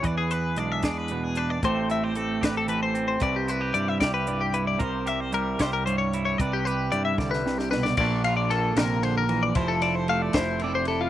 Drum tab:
CC |------------|------------|------------|------------|
RD |------------|------------|------------|------------|
HH |x-x-x-x-x-x-|x-x-x-x-x-x-|x-x-x-x-x-x-|x-x-x-x-x-x-|
SD |------o-----|------o-----|------o-----|------o-----|
BD |o-----o-----|o-----o-----|o-----o-----|o-----o-----|

CC |------------|x-----------|------------|
RD |------------|--x-x-x-x-x-|x-x-x-x-x-x-|
HH |x-x-x-------|------------|------------|
SD |------oooooo|------o-----|------o-----|
BD |o-----o-----|o-----------|o-----o-----|